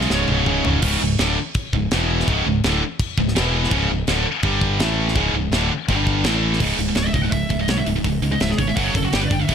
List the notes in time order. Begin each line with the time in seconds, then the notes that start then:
Already playing: C#2 G#2 C#3
0.01 snare
0.10 C#1 C#2 G#2 C#3 C#5, snare
0.28 C#1 C#2 G#2 C#3, high tom
0.46 C#1 C#2 G#2 C#3, mid tom
0.65 C#1 C#2 G#2 C#3, floor tom
0.82 C#1 C#2 G#2 C#3, kick, crash
1.01 C#1 C#2 G#2
1.18 D1 D2 A2 D3, snare, crash
1.54 kick, crash
1.73 C#1 C#2 G#2, kick
1.91 E1 E2 B2 E3, snare, crash
2.20 snare
2.28 C#1 C#2 G#2 C#3, kick, crash
2.46 C#1 C#2 G#2
2.64 D1 D2 A2 D3, snare, crash
3.00 kick, crash
3.18 C#1 C#2 G#2, kick
3.28 snare
3.36 E1 E2 B2 E3, snare, crash
3.64 snare
3.71 C#1 C#2 G#2 C#3, kick, crash
3.91 C#1 C#2 G#2
4.07 D1 D2 A2 D3, snare, crash
4.43 G1 G2 D3 G3, kick, crash
4.61 kick
4.80 A1 A2 E3 A3, snare, crash
5.08 snare
5.15 C#1 C#2 G#2 C#3, kick, crash
5.34 C#1 C#2 G#2
5.51 D1 D2 A2 D3, snare, crash
5.88 G1 G2 D3 G3, kick, crash
6.07 kick
6.24 A1 A2 E3 A3, snare, crash
6.53 snare
6.60 C#1 C#2 G#2 C#3, kick, crash
6.78 C#1 C#2 G#2, open hi-hat
6.88 C#2 G#2
6.95 C#1 C#2 G#2 C#5, snare, open hi-hat
7.06 C#2 G#2 E5
7.13 C#1 C#2 G#2 D#5, kick, open hi-hat
7.22 C#2 G#2 F#5
7.31 C#1 C#2 G#2 E5, kick, open hi-hat
7.49 C#1 C#2 G#2, kick, open hi-hat
7.59 C#2 G#2 D#5
7.68 B1 C#2 G#2 C#5, snare, open hi-hat
7.77 C#2 G#2 E5
7.86 C#1 C#2 G#2, open hi-hat
7.96 C#2 G#2
8.04 C#1 C#2 G#2, kick, open hi-hat
8.22 C#2 G#2, open hi-hat
8.32 C#2 G#2 D#5
8.40 C#1 C#2 G#2 E5, snare, open hi-hat
8.49 C#2 G#2 G#4, snare
8.58 G#1 C#2 G#2 C#5, kick, open hi-hat
8.68 C#2 G#2 E5
8.77 F#1 F#2 C#3 F#3 F#5, kick, open hi-hat
8.84 C#5
8.94 F#1 F#2 C#3 A4, kick, open hi-hat
9.05 F#2 C#3 F#4
9.13 G1 G2 D3 G3 G4, snare, open hi-hat
9.21 G2 D3 B4
9.27 G1 D5, kick, open hi-hat
9.32 G2 D3 G5
9.41 G2 D3 E5
9.49 C#1 C#2 G#2 C#3, kick, open hi-hat